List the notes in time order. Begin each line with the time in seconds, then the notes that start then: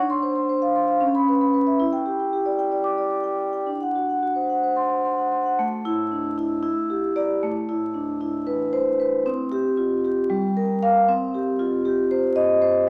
Already playing: D4
0.10 C6
0.22 C5
0.36 C6
0.49 C5
0.62 F5
0.76 C6
0.88 F5
1.01 C#4
1.15 B5
1.28 B4
1.41 B5
1.54 B4
1.67 E5
1.80 E4
1.93 G5
2.06 G4
2.20 G5
2.33 G4
2.46 D5
2.59 G5
2.72 D5
2.84 D6
2.98 D5
3.11 D6
3.24 G5
3.39 D6
3.53 G5
3.66 D4
3.81 F#5
3.95 F#4
4.09 F#5
4.23 F#4
4.36 C5
4.50 F#5
4.63 C5
4.76 C6
4.90 C5
5.05 C6
5.18 F#5
5.32 C6
5.46 F#5
5.59 A3
5.85 E4
6.12 D4
6.38 E4
6.63 E4
6.90 G4
7.16 G4 D5
7.43 A3
7.69 E4
7.94 D4
8.21 E4
8.47 B4
8.73 C5
9.00 B4
9.26 C4
9.52 G4
9.77 F4
10.05 G4
10.30 G3
10.57 A#4
10.83 A#4 F5
11.09 C4
11.34 G4
11.59 F4
11.85 G4
12.11 C5
12.36 D#5
12.62 C5